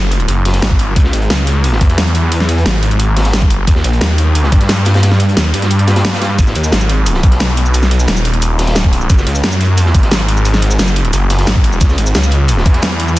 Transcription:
Already playing: F#1
0.11 closed hi-hat
0.20 closed hi-hat
0.28 F#1, closed hi-hat
0.45 snare, closed hi-hat, open hi-hat
0.53 snare, closed hi-hat
0.62 G#1, snare, closed hi-hat
0.71 kick
0.79 closed hi-hat
0.96 C#2, kick, closed hi-hat
1.04 snare
1.13 G#1, closed hi-hat
1.22 closed hi-hat
1.30 C#2, snare, closed hi-hat
1.47 closed hi-hat
1.64 closed hi-hat
1.73 snare
1.81 E2, kick, closed hi-hat
1.89 snare, closed hi-hat
1.98 snare, closed hi-hat
2.07 closed hi-hat
2.15 closed hi-hat
2.32 closed hi-hat
2.40 snare
2.49 closed hi-hat
2.58 closed hi-hat
2.65 G#1, snare, closed hi-hat
2.83 closed hi-hat
2.91 closed hi-hat
2.99 closed hi-hat
3.17 snare, closed hi-hat, open hi-hat
3.25 snare, closed hi-hat
3.33 G1, snare, closed hi-hat
3.42 kick
3.50 closed hi-hat
3.67 D#2, kick, closed hi-hat
3.76 snare
3.84 A#1, closed hi-hat
3.93 closed hi-hat
4.01 D#2, snare, closed hi-hat
4.18 closed hi-hat
4.35 closed hi-hat
4.43 snare
4.52 G2, kick, closed hi-hat
4.60 snare, closed hi-hat
4.69 snare, closed hi-hat
4.77 closed hi-hat
4.85 snare, closed hi-hat
4.94 snare, closed hi-hat
5.03 snare, closed hi-hat
5.11 snare
5.19 closed hi-hat
5.29 closed hi-hat
5.37 D#2, snare, closed hi-hat
5.54 G2, closed hi-hat
5.62 snare, closed hi-hat
5.70 closed hi-hat
5.79 closed hi-hat
5.87 snare, closed hi-hat
5.96 snare, closed hi-hat
6.04 snare, closed hi-hat
6.09 snare, closed hi-hat
6.13 snare, closed hi-hat
6.22 snare, closed hi-hat
6.39 G#1, kick, closed hi-hat, shaker
6.47 snare, shaker
6.55 D#2, closed hi-hat
6.63 closed hi-hat, shaker
6.72 G#1, snare, closed hi-hat, shaker
6.81 shaker
6.89 closed hi-hat
7.06 closed hi-hat, shaker
7.14 snare
7.23 B1, kick, closed hi-hat, shaker
7.32 snare, closed hi-hat
7.40 snare, closed hi-hat, shaker
7.48 closed hi-hat
7.57 closed hi-hat
7.66 shaker
7.74 closed hi-hat, shaker
7.83 snare, shaker
7.91 closed hi-hat
7.99 closed hi-hat, shaker
8.08 D#1, snare, closed hi-hat, shaker
8.17 shaker
8.25 closed hi-hat
8.34 closed hi-hat
8.42 closed hi-hat, shaker
8.59 snare, closed hi-hat, open hi-hat, shaker
8.67 snare, closed hi-hat
8.75 snare, closed hi-hat, shaker
8.84 kick
8.93 closed hi-hat
9.01 shaker
9.10 F#1, kick, closed hi-hat, shaker
9.18 snare, shaker
9.27 C#2, closed hi-hat
9.35 closed hi-hat, shaker
9.44 F#2, snare, closed hi-hat, shaker
9.52 shaker
9.61 closed hi-hat
9.77 closed hi-hat, shaker
9.86 snare
9.95 G#1, kick, closed hi-hat, shaker
10.03 snare, closed hi-hat
10.11 snare, closed hi-hat, shaker
10.20 closed hi-hat
10.28 closed hi-hat
10.37 shaker
10.45 closed hi-hat, shaker
10.54 snare, shaker
10.62 closed hi-hat
10.71 closed hi-hat, shaker
10.79 F#1, snare, closed hi-hat, shaker
10.88 shaker
10.96 closed hi-hat
11.05 closed hi-hat
11.13 F#1, closed hi-hat, shaker
11.30 snare, closed hi-hat, open hi-hat, shaker
11.38 snare, closed hi-hat
11.47 G#1, snare, closed hi-hat, shaker
11.56 kick
11.64 closed hi-hat
11.72 shaker
11.80 C#2, kick, closed hi-hat, shaker
11.89 snare, shaker
11.98 G#1, closed hi-hat
12.06 closed hi-hat, shaker
12.15 C#2, snare, closed hi-hat, shaker
12.23 shaker
12.31 closed hi-hat
12.48 closed hi-hat, shaker
12.57 snare
12.66 E2, kick, closed hi-hat, shaker
12.74 snare, closed hi-hat
12.82 snare, closed hi-hat, shaker
12.91 closed hi-hat
13.00 closed hi-hat
13.08 shaker

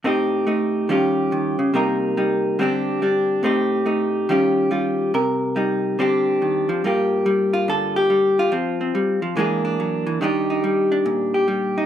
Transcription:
0.04 A2 A3 C4 D#4 G4
0.47 A3 D#4
0.89 D#3 G3 C#4 F4 G4
1.32 D#3
1.59 C#3
1.74 C3 G3 A#3 D#4 A#4
2.17 G3 D#4
2.59 D3 G3 C4 D4 G4
3.02 G3 D4
3.43 A2 A3 C4 D#4 G4
3.86 A3 D#4
4.29 D#3 G3 C#4 F4 G4
4.71 G3 F4
5.14 C3 A#4
5.56 G3 D#4
5.99 D3 G3 C4 D4 G4
6.42 D#3
6.69 F3
6.84 G2 G3 A#3 F4 G4
7.26 G3
7.53 F4
7.68 D3 A4
7.96 G4
8.10 G3
8.39 F4
8.52 F3 C4
8.81 C4
8.95 G3
9.22 F3
9.37 E3 G#3 A#3 D4 G#4
9.65 D4
9.80 F#3
10.07 E3
10.21 D#3 G3 D4 D#4 G4
10.50 D#4
10.64 G3
10.92 D4
11.06 A#2
11.34 G4
11.48 G3
11.78 D#4

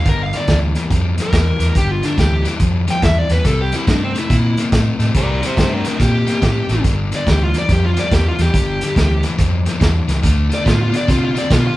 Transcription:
0.05 G1 G2 D3 A#4, kick, closed hi-hat
0.23 F5
0.33 G2 D3, snare, closed hi-hat
0.37 D5
0.48 D2 G2 E3, kick, snare, closed hi-hat
0.75 G2 E3, snare, closed hi-hat
0.90 F2 G2 F3, kick, closed hi-hat
1.18 G2 F3, snare, closed hi-hat
1.22 A#4
1.32 E2 G2 E3, kick, snare, closed hi-hat
1.59 E2 G2 E3, snare, closed hi-hat
1.75 G1 G2 D3 G4, kick, closed hi-hat
1.91 F4
2.02 G2 D3 D4, snare, closed hi-hat
2.17 D2 G2 E3 G4, kick, snare, closed hi-hat
2.45 G2 E3, snare, closed hi-hat
2.60 F2 G2 F3, kick, closed hi-hat
2.87 G2 F3 G5, snare, closed hi-hat
3.02 E2 G2 E3 E5, kick, snare, closed hi-hat
3.18 D5
3.29 E2 G2 E3 B4, snare, closed hi-hat
3.44 C2 C3 G3 A4, kick, snare, closed hi-hat
3.61 G4
3.72 C3 G3 E4, snare, closed hi-hat
3.87 G2 C3 A3 D4, kick, snare, closed hi-hat
4.04 C4
4.15 C3 A3, snare, closed hi-hat
4.19 E4
4.30 A#2 C3 A#3, kick, closed hi-hat
4.57 C3 A#3, snare, closed hi-hat
4.72 A2 C3 A3, kick, snare, closed hi-hat
4.99 A2 C3 A3, snare, closed hi-hat
5.14 C2 C3 G3 A#4 D5, kick, closed hi-hat
5.31 A#4 D5
5.42 C3 G3 G4 C5, snare, closed hi-hat
5.56 G2 C3 A3 G4, kick, snare, closed hi-hat
5.61 C5
5.74 D4 A#4
5.84 C3 A3 D4 A#4, snare, closed hi-hat
5.99 A#2 C3 A#3 G4, kick, snare, closed hi-hat
6.26 C3 A#3, snare, closed hi-hat
6.41 A2 C3 A3, kick, snare, closed hi-hat
6.69 A1 C3 A3, snare, closed hi-hat
6.84 G1 G2 D3, kick, snare, closed hi-hat
7.12 G2 D3, snare, closed hi-hat
7.16 D5
7.26 D2 G2 E3 G4, kick, snare, closed hi-hat
7.43 F4
7.54 G2 E3, snare, closed hi-hat
7.58 D5
7.69 F2 G2 F3 G4, kick, snare, closed hi-hat
7.86 F4
7.96 G2 F3 D5, snare, closed hi-hat
8.11 E2 G2 E3 G4, kick, snare, closed hi-hat
8.28 F4
8.38 E2 G2 E3 G4, snare, closed hi-hat
8.54 G1 G2 D3, kick, closed hi-hat
8.81 G2 D3, snare, closed hi-hat
8.96 D2 G2 E3, kick, snare, closed hi-hat
9.23 G2 E3, snare, closed hi-hat
9.37 F2 G2 F3, kick, snare, closed hi-hat
9.66 G2 F3, snare, closed hi-hat
9.80 E2 G2 E3, kick, snare, closed hi-hat
10.08 C#2 G2 E3, snare, closed hi-hat
10.23 D2 D3 A3, kick, snare, closed hi-hat
10.50 D3 A3, snare, closed hi-hat
10.54 D5
10.65 A2 D3 B3 F4, kick, snare, closed hi-hat
10.82 F4
10.92 D3 B3, snare, closed hi-hat
10.97 D5
11.07 C3 D3 C4 F4, kick, snare, closed hi-hat
11.24 F4
11.35 D3 C4 D5, snare, closed hi-hat
11.50 B2 D3 B3 F4, kick, snare, closed hi-hat
11.67 F4

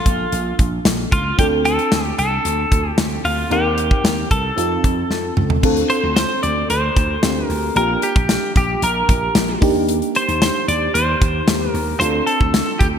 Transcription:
Already playing: A#3 D4 F4 A4
0.06 A#1, kick, closed hi-hat
0.32 A#1, closed hi-hat
0.59 A#1, kick, closed hi-hat
0.85 A#1, snare, closed hi-hat
1.12 C#2 F4, kick, closed hi-hat
1.38 D2 C4 D4 F4 G4 A4, kick, closed hi-hat
1.65 A4, closed hi-hat
1.79 closed hi-hat
1.92 D2, snare, closed hi-hat
2.19 C2 A4, closed hi-hat
2.45 D2, closed hi-hat
2.72 D2, kick, closed hi-hat
2.90 G4
2.98 D2, snare, closed hi-hat
3.25 D2 F4, open hi-hat
3.50 D#2 C4 D#4 G4 A#4, closed hi-hat
3.78 closed hi-hat
3.91 kick
4.04 D#2, snare, closed hi-hat
4.31 C2 A4, kick, closed hi-hat
4.56 F2 C4 D#4 F4 A4, closed hi-hat
4.84 F2, kick, closed hi-hat
5.10 F2, snare
5.37 C#2, mid tom
5.50 floor tom
5.63 D2 C4 D4 F4 A4, kick, crash
5.77 closed hi-hat
5.90 C5, closed hi-hat
6.03 D2
6.16 C5, snare, closed hi-hat
6.43 D2 D5, closed hi-hat
6.70 D2 C5, closed hi-hat
6.97 D2, kick, closed hi-hat
7.23 D2 C4 D4 F4 G4, snare, closed hi-hat
7.46 D2 A#4, open hi-hat
7.75 A#1 A#3 D4 F4 G4 A#4, closed hi-hat
8.02 G4, closed hi-hat
8.16 A#1, kick, closed hi-hat
8.29 snare, closed hi-hat
8.56 A#1 G4, kick, closed hi-hat
8.82 A#1 A#4, closed hi-hat
9.09 A#1, kick, closed hi-hat
9.35 A#1, snare, closed hi-hat
9.61 D#2 A#3 D4 D#4 G4, kick, open hi-hat
9.89 closed hi-hat
10.02 closed hi-hat
10.15 C5, closed hi-hat
10.28 D#2, closed hi-hat
10.42 C5, snare, closed hi-hat
10.68 D#2 D5, closed hi-hat
10.94 D#2 C5, closed hi-hat
11.22 D#2, kick, closed hi-hat
11.48 D#2, snare, closed hi-hat
11.70 D#2 A#4
11.75 open hi-hat
12.00 D2 C4 D4 F4 A4 C5, closed hi-hat
12.27 A4, closed hi-hat
12.41 D2, kick
12.54 snare, closed hi-hat
12.79 D2 G4, kick, closed hi-hat

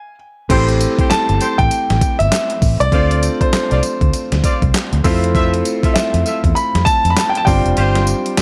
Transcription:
Already playing: G#5
0.49 A1 A3 C4 E4 G4 A4 C5, kick, closed hi-hat, crash
0.69 closed hi-hat
0.80 closed hi-hat, tambourine
0.98 G4 A4 C5, kick, closed hi-hat
1.10 A5, muted fingered electric bass stroke, snare, clap, closed hi-hat, tambourine
1.29 G1, closed hi-hat
1.40 G4 A4 C5, closed hi-hat, tambourine
1.58 A1 G5, kick, closed hi-hat
1.71 closed hi-hat, tambourine
1.90 A1, snare, closed hi-hat
2.01 kick, closed hi-hat, tambourine
2.19 G1 E5, closed hi-hat
2.32 snare, clap, closed hi-hat, tambourine
2.50 closed hi-hat
2.62 A1, kick, open hi-hat, tambourine
2.80 C2 D5, closed hi-hat
2.92 D2 A3 C4 D4 F4 C5 D5, kick, closed hi-hat
3.11 closed hi-hat
3.23 closed hi-hat, tambourine
3.41 C5, kick, closed hi-hat
3.53 muted fingered electric bass stroke, snare, clap, closed hi-hat, tambourine
3.71 C2 F4 C5 D5, closed hi-hat
3.83 closed hi-hat, tambourine
4.01 D2, kick, closed hi-hat
4.13 closed hi-hat, tambourine
4.32 D2, snare, closed hi-hat
4.43 F4 C5 D5, kick, closed hi-hat, tambourine
4.62 C2, kick, closed hi-hat
4.74 muted fingered electric bass stroke, snare, clap, closed hi-hat, tambourine
4.93 D2, closed hi-hat
5.04 F2 A3 C4 E4 F4 A4 C5 E5, kick, open hi-hat, tambourine
5.24 closed hi-hat
5.34 F4 A4 E5, kick, closed hi-hat
5.54 closed hi-hat
5.65 closed hi-hat, tambourine
5.83 F4 A4 E5, kick, closed hi-hat
5.94 E5, muted fingered electric bass stroke, snare, clap, closed hi-hat, tambourine
6.14 F2, closed hi-hat
6.25 F4 A4 E5, closed hi-hat, tambourine
6.44 E2, kick, closed hi-hat
6.55 B5, closed hi-hat, tambourine
6.75 F2, snare, closed hi-hat
6.85 A5, kick, closed hi-hat, tambourine
7.05 F2, closed hi-hat
7.10 B5
7.17 A5, snare, clap, closed hi-hat, tambourine
7.29 G5
7.35 A5, closed hi-hat
7.45 G1 G3 C4 D4 F4 C5 G5, kick, open hi-hat, tambourine
7.66 F1, closed hi-hat
7.76 G1 F4 G4 C5, closed hi-hat
7.95 snare, closed hi-hat
8.07 closed hi-hat, tambourine
8.26 closed hi-hat
8.37 muted fingered electric bass stroke, snare, clap, closed hi-hat, tambourine

